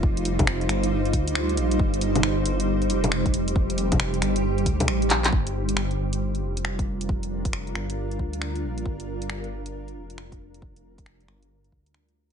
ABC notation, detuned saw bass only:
X:1
M:4/4
L:1/16
Q:"Swing 16ths" 1/4=136
K:Gm
V:1 name="Detuned saw bass" clef=bass
F,,,6 G,,,4 D,,4 B,,,2 | G,,,6 G,,,4 F,,,6- | F,,,6 G,,,4 D,,2 A,,,2 B,,,2 | G,,,6 G,,,4 F,,,6- |
F,,,6 G,,,4 D,,4 B,,,2 | G,,,6 G,,,4 F,,,6- | F,,,6 G,,,4 D,,4- D,, z |]